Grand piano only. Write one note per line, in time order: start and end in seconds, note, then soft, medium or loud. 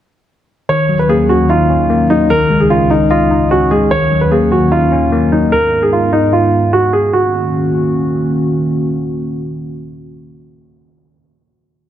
0.69 0.97 C#5 medium
0.99 1.09 B4 medium
1.09 1.28 G#4 medium
1.29 1.48 F#4 medium
1.50 2.06 F4 medium
2.10 2.29 D#4 medium
2.30 2.59 A#4 loud
2.60 2.70 G#4 medium
2.70 2.89 F4 medium
2.90 3.09 D#4 medium
3.11 3.48 F4 medium
3.51 3.70 F#4 medium
3.71 3.90 G#4 medium
3.91 4.20 C#5 loud
4.21 4.31 B4 medium
4.31 4.50 G#4 medium
4.52 4.70 F#4 medium
4.72 5.29 F4 medium
5.32 5.51 D#4 medium
5.52 5.81 A#4 loud
5.83 5.92 G#4 medium
5.93 6.11 F4 medium
6.13 6.32 D#4 medium
6.33 6.71 F4 medium
6.73 6.92 F#4 medium
6.93 7.12 G#4 medium
7.13 8.30 F#4 medium